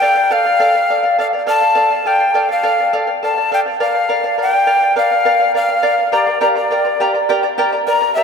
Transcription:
Already playing: quena G5
0.01 charango A4 D5 F5
0.16 charango D5 F5
0.31 charango A4 D5 F5, quena F5
0.45 charango D5 F5
0.60 charango A4 D5 F5
0.74 charango D5 F5
0.90 charango A4 D5 F5
1.03 charango D5 F5
1.19 charango A4 D5 F5, quena F5
1.33 charango D5 F5
1.47 charango A4 D5 F5, quena A5
1.61 charango D5 F5
1.75 charango A4 D5 F5
1.90 charango D5 F5
2.05 charango A4 D5 F5, quena G5
2.20 charango D5 F5
2.34 charango A4 D5 F5
2.49 charango D5 F5, quena F5
2.63 charango A4 D5 F5
2.79 charango D5 F5
2.93 charango A4 D5 F5
3.07 charango D5 F5
3.23 charango A4 D5 F5, quena A5
3.36 charango D5 F5
3.51 charango A4 D5 F5, quena G5
3.66 charango D5 F5
3.80 charango A#4 D5 F5, quena F5
3.95 charango D5 F5
4.09 charango A#4 D5 F5
4.24 charango D5 F5
4.38 charango A#4 D5 F5
4.42 quena G5
4.53 charango D5 F5
4.67 charango A#4 D5 F5
4.81 charango D5 F5
4.96 charango A#4 D5 F5, quena F5
5.11 charango D5 F5
5.25 charango A#4 D5 F5
5.40 charango D5 F5
5.54 charango A#4 D5 F5, quena F5
5.69 charango D5 F5
5.83 charango A#4 D5 F5
5.98 charango D5 F5
6.12 charango G4 A#4 D5 G5 A#5, quena D5
6.27 charango A#4 D5 A#5
6.41 charango G4 A#4 D5 G5 A#5, quena D5
6.56 charango A#4 D5 A#5, quena D5
6.71 charango A#4 D5 G5 A#5
6.85 charango A#4 D5 A#5
7.00 charango G4 A#4 D5 G5 A#5
7.14 charango A#4 D5 A#5
7.29 charango G4 A#4 D5 G5 A#5
7.43 charango A#4 D5 A#5
7.58 charango G4 A#4 D5 G5 A#5
7.73 charango A#4 D5 A#5
7.87 charango A#4 D5 G5 A#5, quena A#5
8.01 charango A#4 D5 A#5
8.15 charango G4 A#4 D5 G5 A#5, quena E5

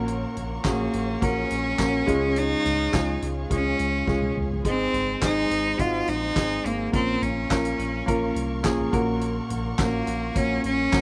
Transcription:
Already playing: analog synth bass A#1, upright piano A#2 A#3 C#4 F#4 A#4, string section A#4 C#5 F#5 C#6
0.08 closed hi-hat
0.36 analog synth bass A#1, closed hi-hat, floor tom
0.64 analog synth bass A#1, upright piano A#3 C#4 F#4 G#4, cello A#3, kick, snare, clap, closed hi-hat
0.93 analog synth bass A#1, closed hi-hat
1.21 analog synth bass A#1, upright piano A#3 C#4 F#4 A#4, cello C#4, kick, closed hi-hat
1.51 analog synth bass A#1, closed hi-hat
1.78 analog synth bass A#1, upright piano A#3 C#4 F#4 A#4, kick, snare, clap, closed hi-hat
2.06 analog synth bass C#2, upright piano C#3 G#3 C#4 F4 G#4, string section G#4 F5, kick, closed hi-hat
2.36 cello D#4, closed hi-hat
2.65 analog synth bass C#2, closed hi-hat, floor tom
2.92 analog synth bass C#2, upright piano G#3 C#4 F4 G#4, kick, snare, clap, closed hi-hat
3.22 analog synth bass C#2, closed hi-hat
3.50 analog synth bass C#2, upright piano G#3 C#4 F4 G#4, cello C#4, kick, closed hi-hat
3.79 analog synth bass C#2, closed hi-hat
4.07 analog synth bass C#2, upright piano G#3 C#4 F4 G#4, kick, snare
4.22 high tom
4.36 analog synth bass C#2, mid tom
4.50 floor tom
4.64 analog synth bass G#1, upright piano G#2 G#3 C4 D#4 G#4, cello C4, string section C5 D#5 C6, kick, closed hi-hat
4.93 analog synth bass G#1, closed hi-hat, floor tom
5.21 analog synth bass G#1, upright piano G#3 C4 D#4 G#4, cello D#4, kick, snare, clap, closed hi-hat
5.51 analog synth bass G#1, closed hi-hat
5.78 analog synth bass G#1, upright piano G#3 C4 D#4 F#4, cello F4, kick, closed hi-hat
6.08 analog synth bass A#1, cello D#4, closed hi-hat
6.35 analog synth bass G#1, upright piano G#3 C4 D#4 G#4, kick, snare, clap, closed hi-hat
6.65 analog synth bass G#1, cello A#3, closed hi-hat
6.92 analog synth bass A#1, upright piano A#2 A#3 C#4 F4 A#4, cello C4, string section A#4 F5 C#6, kick, closed hi-hat
7.22 analog synth bass A#1, cello C#4, closed hi-hat, floor tom
7.50 analog synth bass A#1, upright piano A#3 C#4 F4 A#4, kick, snare, clap, closed hi-hat
7.65 closed hi-hat
7.79 analog synth bass A#1, closed hi-hat
8.06 analog synth bass A#1, upright piano A#3 C#4 F4 A#4, kick, closed hi-hat
8.35 analog synth bass C2, closed hi-hat
8.63 analog synth bass A#1, upright piano A#3 C#4 F4 G#4, kick, snare, clap, closed hi-hat
8.79 floor tom
8.92 analog synth bass A#1, upright piano A#2 A#3 C#4 F#4 A#4, string section F#5, kick, closed hi-hat
9.21 closed hi-hat
9.50 analog synth bass A#1, closed hi-hat, floor tom
9.78 analog synth bass A#1, upright piano A#3 C#4 F#4 A#4, cello A#3, kick, snare, clap, closed hi-hat
10.07 analog synth bass A#1, closed hi-hat
10.34 analog synth bass A#1, upright piano A#3 C#4 F#4 C#5, cello C#4, kick, closed hi-hat
10.64 analog synth bass A#1, cello C#4, closed hi-hat
10.92 analog synth bass A#1, upright piano A#3 C#4 F#4 A#4, kick, snare, clap, closed hi-hat

